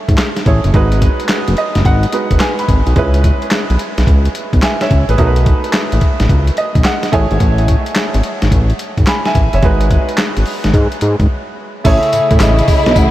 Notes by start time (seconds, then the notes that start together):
Already playing: A3 E4 G#4 C#5
0.08 G#1, kick, closed hi-hat
0.18 snare, clap, closed hi-hat
0.36 snare, closed hi-hat
0.46 A1 A3 E4 G#4 C#5, kick, closed hi-hat
0.64 F#1, closed hi-hat
0.73 G#1 G#3 D#4 F#4 B4, kick, closed hi-hat
0.92 closed hi-hat
1.02 kick, closed hi-hat
1.20 closed hi-hat
1.29 snare, clap, closed hi-hat
1.48 F#1, closed hi-hat
1.57 D#5, closed hi-hat
1.75 F#1, snare, closed hi-hat
1.85 G#1 F#5, kick, closed hi-hat
2.03 closed hi-hat
2.12 G#3 D#4 F#4 B4, closed hi-hat
2.31 F#1, kick, closed hi-hat
2.40 G#5, snare, clap, closed hi-hat
2.59 B5, closed hi-hat
2.68 G#1, kick, closed hi-hat
2.87 B1, closed hi-hat
2.96 C#2 G#3 C#4 E4 B4, kick, closed hi-hat
3.14 closed hi-hat
3.24 kick, closed hi-hat
3.42 closed hi-hat
3.51 snare, clap, closed hi-hat
3.70 B1, closed hi-hat
3.79 closed hi-hat
3.98 B1, snare, closed hi-hat
4.07 C#2, kick, closed hi-hat
4.25 closed hi-hat
4.35 closed hi-hat
4.53 B1, kick, closed hi-hat
4.62 E5 G#5, snare, clap, closed hi-hat
4.81 C#5 E5, snare, closed hi-hat
4.91 C#2, kick, closed hi-hat
5.09 A1 G#4 B4, closed hi-hat
5.18 B1 A3 D#4 F#4 A#4, kick, closed hi-hat
5.27 B4
5.36 closed hi-hat
5.46 kick, closed hi-hat
5.64 closed hi-hat
5.73 snare, clap, closed hi-hat
5.92 A1, closed hi-hat
6.01 kick, closed hi-hat
6.20 A1, snare, closed hi-hat
6.29 C#2, kick, closed hi-hat
6.47 closed hi-hat
6.57 D#5, closed hi-hat
6.75 B1, kick, closed hi-hat
6.84 F#5, snare, clap, closed hi-hat
7.03 snare, closed hi-hat
7.12 A1 A3 E4 G#4 C#5 G#5, kick, closed hi-hat
7.31 G#1, closed hi-hat
7.40 A1, kick, closed hi-hat
7.58 closed hi-hat
7.68 kick, closed hi-hat
7.86 closed hi-hat
7.95 snare, clap, closed hi-hat
8.14 G#1, closed hi-hat
8.23 closed hi-hat
8.42 G#1, snare, closed hi-hat
8.51 A1, kick, closed hi-hat
8.70 closed hi-hat
8.79 closed hi-hat
8.97 G#1, kick, closed hi-hat
9.07 G#5 B5, snare, clap, closed hi-hat
9.26 E5 G#5, snare, closed hi-hat
9.35 A1, kick, closed hi-hat
9.53 F#1 C#5 E5, closed hi-hat
9.62 G#1 G#3 D#4 F#4 B4, kick, closed hi-hat
9.81 closed hi-hat
9.91 kick, closed hi-hat
10.09 closed hi-hat
10.18 snare, clap, closed hi-hat
10.37 G#1, closed hi-hat
10.46 open hi-hat
10.64 G#1, snare, closed hi-hat
10.74 G#2, kick, closed hi-hat
10.92 closed hi-hat
11.01 G#2, closed hi-hat
11.20 G#1, kick, closed hi-hat
11.84 A1 C#3 A3 E4 G#4 C#5 E5, kick, closed hi-hat, crash, tambourine
12.03 closed hi-hat
12.12 A2, closed hi-hat, tambourine
12.31 A2, kick, closed hi-hat
12.40 A1 D#5, snare, clap, closed hi-hat, tambourine
12.59 closed hi-hat
12.68 kick, open hi-hat, tambourine
12.86 B1, snare, closed hi-hat
12.96 A1 F#5, kick, closed hi-hat, tambourine